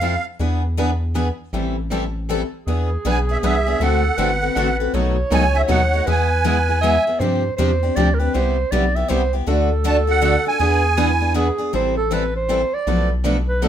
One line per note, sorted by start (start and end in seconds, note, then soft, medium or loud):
0.00 0.17 F2 medium
0.00 0.13 F3 medium
0.00 0.13 C4 medium
0.00 0.14 E4 medium
0.00 0.14 A4 medium
0.00 0.26 F5 medium
0.39 1.31 E2 medium
0.39 0.61 E3 medium
0.39 0.62 B3 medium
0.39 0.62 D4 medium
0.39 0.62 G#4 medium
0.39 0.62 B4 medium
0.77 0.89 E3 medium
0.77 0.89 B3 medium
0.77 0.89 D4 medium
0.77 0.90 G#4 medium
0.77 0.90 B4 medium
1.15 1.27 E3 medium
1.15 1.27 B3 medium
1.15 1.27 D4 medium
1.15 1.27 G#4 medium
1.15 1.27 B4 medium
1.53 2.44 A1 medium
1.53 1.75 E3 medium
1.53 1.75 G3 medium
1.53 1.75 C4 medium
1.53 1.75 E4 medium
1.53 1.76 A4 medium
1.91 2.03 E3 medium
1.91 2.03 G3 medium
1.91 2.03 C4 medium
1.91 2.03 E4 medium
1.91 2.03 A4 medium
2.29 2.41 E3 medium
2.29 2.41 G3 medium
2.29 2.41 C4 medium
2.29 2.41 E4 medium
2.29 2.41 A4 medium
2.66 2.97 E2 medium
2.66 2.89 E3 medium
2.66 2.89 B3 medium
2.66 2.89 D4 medium
2.66 3.82 G#4 medium
2.66 2.89 G#4 medium
2.66 2.89 B4 medium
3.05 3.37 B1 medium
3.05 3.16 E3 medium
3.05 3.16 B3 medium
3.05 3.16 D4 medium
3.05 3.17 G#4 medium
3.05 3.17 B4 loud
3.10 3.19 G#5 medium
3.29 3.42 B3 soft
3.29 3.42 D4 soft
3.29 3.42 G#4 medium
3.29 3.38 E5 medium
3.43 3.75 C2 medium
3.43 3.54 E3 medium
3.43 3.54 B3 medium
3.43 3.55 D4 medium
3.43 3.55 G#4 medium
3.43 3.55 B4 medium
3.43 3.83 E5 medium
3.67 3.81 B3 soft
3.67 3.81 D4 soft
3.67 3.80 G#4 medium
3.80 4.10 D2 medium
3.80 4.02 D3 medium
3.80 4.02 A3 medium
3.80 4.02 C4 medium
3.80 4.02 F#4 medium
3.80 4.19 A4 medium
3.80 4.03 A4 medium
3.80 4.77 F#5 medium
4.18 4.50 G1 medium
4.18 4.29 D3 medium
4.18 4.30 A3 medium
4.18 4.30 C4 medium
4.18 4.30 F#4 medium
4.18 4.30 A4 medium
4.18 4.95 B4 medium
4.42 4.56 C4 soft
4.42 4.56 F#4 soft
4.42 4.56 A4 soft
4.56 4.88 A1 medium
4.56 4.68 D3 medium
4.56 4.68 A3 medium
4.56 4.68 C4 medium
4.56 4.68 F#4 medium
4.56 4.68 A4 medium
4.80 4.94 C4 soft
4.80 4.93 F#4 medium
4.80 4.94 A4 medium
4.94 5.24 B1 medium
4.94 5.15 B2 medium
4.94 5.15 D#3 medium
4.94 5.15 F#3 medium
4.94 5.16 A3 medium
4.94 5.16 B3 medium
4.94 5.16 D#4 medium
4.94 5.16 F#4 medium
4.94 5.16 A4 medium
4.94 6.08 C#5 loud
5.31 5.64 C#2 medium
5.31 5.43 B2 medium
5.31 5.43 D#3 medium
5.31 5.43 F#3 medium
5.31 5.43 A3 medium
5.31 5.43 B3 medium
5.31 5.43 D#4 medium
5.31 5.43 F#4 medium
5.31 5.43 A4 loud
5.31 5.57 G#5 medium
5.54 5.68 A3 soft
5.54 5.68 D#4 medium
5.54 5.68 F#4 medium
5.54 5.62 E5 medium
5.68 6.01 D#2 medium
5.68 5.80 B2 medium
5.68 5.80 D#3 medium
5.68 5.81 F#3 medium
5.68 5.81 A3 medium
5.68 5.80 B3 medium
5.68 5.81 D#4 medium
5.68 5.81 F#4 medium
5.68 5.81 A4 medium
5.68 6.05 F#5 medium
5.93 6.07 A3 soft
5.93 6.07 D#4 medium
5.93 6.07 F#4 medium
6.06 6.98 E2 medium
6.06 6.29 E3 medium
6.06 6.29 G#3 medium
6.06 6.29 B3 medium
6.06 6.29 E4 medium
6.06 6.29 G#4 medium
6.06 6.81 B4 loud
6.10 7.04 G#5 medium
6.44 6.56 E3 medium
6.44 6.56 G#3 medium
6.44 6.56 B3 medium
6.44 6.56 E4 medium
6.44 6.56 G#4 medium
6.68 6.83 B3 soft
6.68 6.82 E4 soft
6.68 6.82 G#4 medium
6.81 6.94 E3 medium
6.81 6.95 G#3 medium
6.81 6.95 B3 medium
6.81 6.95 E4 medium
6.81 6.95 G#4 medium
6.81 7.21 E5 loud
7.07 7.21 B3 soft
7.07 7.21 E4 soft
7.07 7.20 G#4 medium
7.19 7.51 G2 medium
7.19 7.42 C3 medium
7.19 7.42 F3 medium
7.19 7.42 C4 medium
7.19 7.43 D4 medium
7.19 7.43 G4 medium
7.19 7.56 C5 medium
7.57 7.91 E2 medium
7.57 7.70 C3 medium
7.57 7.70 F3 medium
7.57 7.70 C4 medium
7.57 7.70 D4 medium
7.57 7.70 G4 medium
7.57 7.97 C5 medium
7.83 7.96 C4 soft
7.83 7.96 D4 soft
7.83 7.96 G4 soft
7.96 8.29 D2 medium
7.96 8.08 C3 medium
7.96 8.08 F3 medium
7.96 8.08 C4 medium
7.96 8.08 D4 medium
7.96 8.08 G4 medium
7.96 8.16 D5 medium
8.14 8.21 A#4 medium
8.19 8.34 C4 soft
8.19 8.34 D4 soft
8.19 8.33 G4 medium
8.19 8.36 B4 medium
8.34 8.65 C2 medium
8.34 8.56 C3 medium
8.34 8.56 G3 medium
8.34 8.56 B3 medium
8.34 8.56 E4 medium
8.34 8.56 G4 medium
8.34 8.73 C5 loud
8.71 9.04 B1 medium
8.71 8.83 C3 medium
8.71 8.83 G3 medium
8.71 8.84 B3 medium
8.71 8.83 E4 medium
8.71 8.84 G4 medium
8.71 8.97 D5 medium
8.95 9.08 B3 soft
8.95 9.08 E4 soft
8.95 9.08 G4 medium
8.95 9.11 E5 medium
9.08 9.42 C2 medium
9.08 9.20 C3 medium
9.08 9.21 G3 medium
9.08 9.21 B3 medium
9.08 9.21 E4 medium
9.08 9.21 G4 medium
9.08 9.33 C5 loud
9.33 9.47 B3 soft
9.33 9.47 E4 soft
9.33 9.47 G4 medium
9.46 10.38 D2 medium
9.46 9.68 D3 medium
9.46 9.68 A3 medium
9.46 9.69 D4 medium
9.46 9.69 F#4 medium
9.46 9.69 A4 medium
9.46 10.62 A4 loud
9.84 9.96 D3 medium
9.84 9.96 A3 medium
9.84 9.96 D4 medium
9.84 9.96 F#4 medium
9.84 9.96 A4 medium
9.84 9.97 A5 medium
10.07 10.20 D4 soft
10.07 10.21 F#4 medium
10.07 10.21 A4 soft
10.07 10.45 F#5 loud
10.21 10.34 D3 medium
10.21 10.33 A3 medium
10.21 10.34 D4 medium
10.21 10.34 F#4 medium
10.21 10.34 A4 medium
10.45 10.59 D4 soft
10.45 10.60 F#4 soft
10.45 10.59 A4 medium
10.45 11.33 G#5 medium
10.59 11.51 E2 medium
10.59 10.81 E3 medium
10.59 10.81 B3 medium
10.59 10.82 D4 medium
10.59 10.82 G#4 medium
10.59 11.00 G#4 medium
10.59 10.82 B4 medium
10.97 11.09 E3 medium
10.97 11.09 B3 medium
10.97 11.10 D4 medium
10.97 11.36 E4 medium
10.97 11.09 G#4 loud
10.97 11.09 B4 medium
11.20 11.33 B3 soft
11.20 11.34 D4 soft
11.20 11.34 G#4 medium
11.34 11.47 E3 medium
11.34 11.47 B3 medium
11.34 11.47 D4 medium
11.34 11.47 G#4 medium
11.34 11.71 G#4 medium
11.34 11.47 B4 medium
11.58 11.73 B3 soft
11.58 11.73 D4 soft
11.58 11.73 G#4 medium
11.73 12.64 A1 medium
11.73 11.95 E3 medium
11.73 11.95 G3 medium
11.73 11.95 C4 medium
11.73 11.95 E4 medium
11.73 11.95 A4 medium
11.73 11.96 C5 medium
11.97 12.15 A4 medium
12.11 12.23 E3 medium
12.11 12.23 G3 medium
12.11 12.23 C4 medium
12.11 12.23 E4 medium
12.11 12.23 A4 medium
12.11 12.35 B4 medium
12.36 12.76 C5 medium
12.49 12.61 E3 medium
12.49 12.61 G3 medium
12.49 12.61 C4 medium
12.49 12.61 E4 medium
12.49 12.61 A4 medium
12.74 13.11 D5 medium
12.87 13.68 B1 medium
12.87 13.08 B2 medium
12.87 13.09 F3 medium
12.87 13.09 A3 medium
12.87 13.09 D4 medium
12.87 13.09 A4 medium
12.87 13.09 B4 medium
13.24 13.36 B2 medium
13.24 13.36 F3 medium
13.24 13.36 A3 medium
13.24 13.36 D4 medium
13.24 13.37 A4 medium
13.24 13.36 B4 medium
13.49 13.65 B4 medium
13.62 13.68 B2 medium
13.62 13.68 F3 medium
13.62 13.68 A3 medium
13.62 13.68 D4 medium
13.62 13.68 A4 medium
13.62 13.68 B4 medium